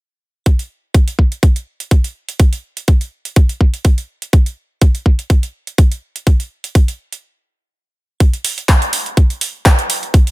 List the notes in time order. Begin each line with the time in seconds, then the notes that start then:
0.46 kick, closed hi-hat
0.59 closed hi-hat
0.94 kick, closed hi-hat
1.08 closed hi-hat
1.19 kick
1.32 closed hi-hat
1.43 kick, closed hi-hat
1.56 closed hi-hat
1.80 closed hi-hat
1.91 kick, closed hi-hat
2.04 closed hi-hat
2.29 closed hi-hat
2.40 kick, closed hi-hat
2.53 closed hi-hat
2.77 closed hi-hat
2.88 kick, closed hi-hat
3.01 closed hi-hat
3.25 closed hi-hat
3.36 kick, closed hi-hat
3.49 closed hi-hat
3.61 kick
3.74 closed hi-hat
3.85 kick, closed hi-hat
3.98 closed hi-hat
4.22 closed hi-hat
4.33 kick, closed hi-hat
4.46 closed hi-hat
4.81 kick, closed hi-hat
4.95 closed hi-hat
5.06 kick
5.19 closed hi-hat
5.30 kick, closed hi-hat
5.43 closed hi-hat
5.67 closed hi-hat
5.78 kick, closed hi-hat
5.92 closed hi-hat
6.16 closed hi-hat
6.27 kick, closed hi-hat
6.40 closed hi-hat
6.64 closed hi-hat
6.75 kick, closed hi-hat
6.88 closed hi-hat
7.12 closed hi-hat
8.20 kick, closed hi-hat
8.34 closed hi-hat
8.45 open hi-hat
8.58 closed hi-hat
8.69 kick, clap, closed hi-hat
8.82 closed hi-hat
8.93 open hi-hat
9.06 closed hi-hat
9.17 kick, closed hi-hat
9.30 closed hi-hat
9.41 open hi-hat
9.65 kick, clap, closed hi-hat
9.79 closed hi-hat
9.90 open hi-hat
10.03 closed hi-hat
10.14 kick, closed hi-hat
10.27 closed hi-hat